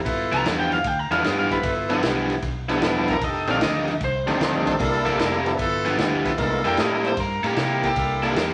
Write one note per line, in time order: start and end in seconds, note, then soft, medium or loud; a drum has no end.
0.04 0.31 G1 loud
0.04 0.55 B3 medium
0.04 0.56 E4 medium
0.04 0.56 F4 medium
0.04 0.56 A4 loud
0.04 kick loud
0.04 snare soft
0.04 ride medium
0.32 0.43 C2 medium
0.32 0.44 G2 medium
0.32 0.44 F3 medium
0.32 0.45 B3 medium
0.32 0.45 E4 loud
0.32 0.46 A#5 loud
0.32 snare soft
0.32 ride medium
0.44 0.83 E2 loud
0.44 0.76 G2 medium
0.44 0.76 F3 medium
0.44 0.76 B3 medium
0.44 0.76 E4 medium
0.44 snare loud
0.44 ride medium
0.59 0.72 G5 medium
0.72 0.87 F5 medium
0.72 snare soft
0.72 ride medium
0.84 1.10 D2 loud
0.84 0.99 G5 medium
0.84 kick loud
0.84 snare soft
0.84 ride medium
0.99 1.11 A#5 medium
1.11 1.23 E2 medium
1.11 1.23 G2 medium
1.11 1.23 F3 medium
1.11 1.23 B3 medium
1.11 1.24 B3 medium
1.11 1.23 D4 medium
1.11 1.24 E4 medium
1.11 1.23 E4 medium
1.11 1.23 A4 medium
1.11 1.26 F5 medium
1.11 snare soft
1.11 ride medium
1.23 1.62 G2 medium
1.23 1.54 G2 medium
1.23 1.55 F3 medium
1.23 1.55 B3 medium
1.23 1.55 E4 medium
1.23 1.38 D#5 medium
1.23 snare loud
1.23 ride medium
1.39 1.51 F5 medium
1.49 1.58 B3 medium
1.49 1.58 E4 medium
1.49 1.58 F4 medium
1.49 1.59 A4 medium
1.49 1.73 B4 medium
1.49 kick medium
1.49 snare soft
1.49 ride medium
1.62 2.02 G1 medium
1.62 2.13 B3 medium
1.62 2.13 E4 medium
1.62 2.13 F4 medium
1.62 2.14 A4 medium
1.62 kick loud
1.62 snare soft
1.62 ride medium
1.89 2.01 G2 medium
1.89 2.01 F3 medium
1.89 2.02 F3 medium
1.89 2.02 B3 medium
1.89 2.02 D4 medium
1.89 2.02 E4 medium
1.89 2.03 E4 medium
1.89 2.02 A4 medium
1.89 snare soft
1.89 ride medium
2.03 2.41 B1 medium
2.03 2.33 G2 medium
2.03 2.34 F3 medium
2.03 2.34 B3 medium
2.03 2.34 E4 medium
2.03 snare loud
2.03 ride medium
2.30 snare soft
2.30 ride medium
2.42 2.81 B1 loud
2.42 kick loud
2.42 snare soft
2.42 ride medium
2.68 2.80 G2 medium
2.68 3.19 F3 medium
2.68 2.81 F3 medium
2.68 3.19 B3 medium
2.68 2.81 B3 medium
2.68 3.19 D4 medium
2.68 2.82 E4 medium
2.68 3.19 E4 medium
2.68 3.20 A4 medium
2.68 snare soft
2.68 ride medium
2.81 3.22 E1 medium
2.81 3.12 G2 medium
2.81 3.12 F3 medium
2.81 3.13 B3 medium
2.81 3.13 E4 medium
2.81 snare loud
2.81 ride medium
3.07 3.16 B3 medium
3.07 3.16 E4 medium
3.07 3.16 F4 medium
3.07 3.17 A4 medium
3.07 3.23 A#4 medium
3.07 kick medium
3.07 snare soft
3.07 ride medium
3.21 3.47 F1 medium
3.21 3.72 D4 medium
3.21 3.72 D#4 medium
3.21 3.72 G4 medium
3.21 3.73 A4 medium
3.21 3.49 D#5 medium
3.21 kick loud
3.21 snare soft
3.21 ride medium
3.47 3.60 A#1 medium
3.47 3.60 F2 medium
3.47 3.61 D#3 medium
3.47 3.60 G3 medium
3.47 3.61 A3 medium
3.47 3.60 C4 medium
3.47 3.61 D4 loud
3.47 3.60 D4 medium
3.47 3.60 D#4 medium
3.47 3.61 A4 loud
3.47 3.62 F5 medium
3.47 snare soft
3.47 ride medium
3.61 3.99 D2 loud
3.61 3.92 F2 medium
3.61 3.92 D#3 medium
3.61 3.92 A3 medium
3.61 3.92 D4 medium
3.61 4.01 D#5 medium
3.61 snare loud
3.61 ride medium
3.88 snare soft
3.88 ride medium
4.00 4.26 C2 medium
4.00 4.79 C5 loud
4.00 kick loud
4.00 snare soft
4.00 ride medium
4.26 4.40 D2 medium
4.26 4.39 F2 medium
4.26 4.40 D#3 medium
4.26 4.77 G3 medium
4.26 4.40 A3 medium
4.26 4.77 C4 medium
4.26 4.77 D4 medium
4.26 4.40 D4 medium
4.26 4.77 D#4 medium
4.26 4.78 A4 medium
4.26 snare soft
4.26 ride medium
4.40 4.78 D2 medium
4.40 4.70 F2 medium
4.40 4.71 D#3 medium
4.40 4.71 A3 medium
4.40 4.71 D4 medium
4.40 snare loud
4.40 ride medium
4.66 4.74 D4 medium
4.66 4.75 D#4 medium
4.66 4.75 G4 medium
4.66 4.75 A4 loud
4.66 kick medium
4.66 snare soft
4.66 ride medium
4.79 5.18 C2 loud
4.79 5.40 G3 medium
4.79 5.29 A#3 loud
4.79 5.40 A#3 medium
4.79 5.30 D4 loud
4.79 5.41 D4 medium
4.79 5.30 E4 medium
4.79 5.41 E4 medium
4.79 5.30 A4 loud
4.79 5.41 A4 medium
4.79 kick loud
4.79 snare soft
4.79 ride medium
5.05 5.17 C3 medium
5.05 5.18 A#3 medium
5.05 5.18 E4 medium
5.05 5.18 A4 loud
5.05 kick medium
5.05 snare soft
5.05 ride medium
5.18 5.58 F1 medium
5.18 5.49 C3 medium
5.18 5.49 A#3 medium
5.18 5.50 E4 medium
5.18 5.50 A4 medium
5.18 snare loud
5.18 ride medium
5.45 5.57 F3 medium
5.45 5.57 B3 medium
5.45 5.58 D4 medium
5.45 5.58 E4 medium
5.45 5.58 A4 medium
5.45 snare soft
5.45 ride medium
5.58 5.97 G1 loud
5.58 6.08 B3 loud
5.58 6.08 E4 medium
5.58 6.09 F4 medium
5.58 6.09 A4 loud
5.58 kick loud
5.58 snare soft
5.58 ride medium
5.85 5.97 G2 medium
5.85 5.97 F3 medium
5.85 5.97 B3 medium
5.85 5.98 E4 medium
5.85 snare soft
5.85 ride medium
5.98 6.36 D2 medium
5.98 6.28 G2 medium
5.98 6.29 F3 medium
5.98 6.29 B3 medium
5.98 6.29 E4 medium
5.98 snare loud
5.98 ride medium
6.24 6.32 B3 loud
6.24 6.32 E4 medium
6.24 6.33 F4 medium
6.24 6.33 A4 loud
6.24 kick medium
6.24 snare soft
6.24 ride medium
6.37 6.63 C2 medium
6.37 6.61 G#3 medium
6.37 6.88 A#3 loud
6.37 6.62 B3 medium
6.37 6.88 D4 medium
6.37 6.62 D#4 medium
6.37 6.88 E4 medium
6.37 6.62 F4 medium
6.37 6.89 A4 loud
6.37 6.62 A#4 medium
6.37 kick loud
6.37 snare soft
6.37 ride medium
6.63 6.77 F2 medium
6.63 6.77 C3 medium
6.63 6.98 G3 medium
6.63 6.98 A#3 soft
6.63 6.77 A#3 medium
6.63 6.99 D4 soft
6.63 6.99 E4 medium
6.63 6.78 E4 medium
6.63 6.78 A4 medium
6.63 6.99 A4 medium
6.63 6.78 G5 medium
6.63 snare soft
6.63 ride medium
6.77 7.16 A2 medium
6.77 7.08 C3 medium
6.77 7.08 A#3 medium
6.77 7.08 E4 medium
6.77 7.09 A4 medium
6.77 7.04 D#5 medium
6.77 snare loud
6.77 ride medium
7.03 7.15 G3 medium
7.03 7.15 A#3 medium
7.03 7.16 D4 medium
7.03 7.16 E4 medium
7.03 7.16 A4 medium
7.03 7.18 C5 medium
7.03 snare soft
7.03 ride medium
7.17 7.43 G2 loud
7.17 7.47 A#4 medium
7.17 kick loud
7.17 snare soft
7.17 ride medium
7.43 7.56 A2 medium
7.43 7.55 C3 medium
7.43 7.56 A#3 medium
7.43 7.56 E4 medium
7.43 7.84 G4 medium
7.43 7.57 A4 medium
7.43 snare soft
7.43 ride medium
7.56 7.87 C3 medium
7.56 7.95 C3 medium
7.56 7.87 A#3 medium
7.56 7.88 E4 medium
7.56 7.88 A4 medium
7.56 snare loud
7.56 ride medium
7.82 7.91 A#3 medium
7.82 7.91 D4 medium
7.82 7.91 E4 medium
7.82 8.23 G4 loud
7.82 7.91 A4 medium
7.82 kick medium
7.82 snare soft
7.82 ride medium
7.95 8.34 C2 medium
7.95 8.46 A#3 medium
7.95 8.46 D4 medium
7.95 8.47 E4 medium
7.95 8.47 A4 medium
7.95 kick loud
7.95 snare soft
7.95 ride medium
8.22 8.34 C3 medium
8.22 8.35 G3 medium
8.22 8.35 A#3 medium
8.22 8.35 D4 medium
8.22 8.35 E4 medium
8.22 8.36 A4 medium
8.22 8.35 A4 medium
8.22 snare soft
8.22 ride medium
8.35 8.54 E2 medium
8.35 8.54 C3 medium
8.35 8.54 A#3 medium
8.35 8.54 E4 medium
8.35 8.54 A4 medium
8.35 snare loud
8.35 ride medium